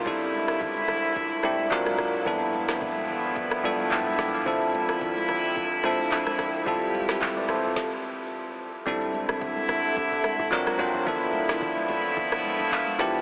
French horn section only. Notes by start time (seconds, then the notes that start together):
0.06 C2 D3 A3 E4
1.71 D2 C3 F#3 A#3
2.26 G2 F3 A3 B3 E4
4.46 F2 C3 F3 E4
6.66 F3 A3 G4
8.86 D3 A3 E4
10.52 C3 A#3 F#4
11.07 F3 A3 B3 E4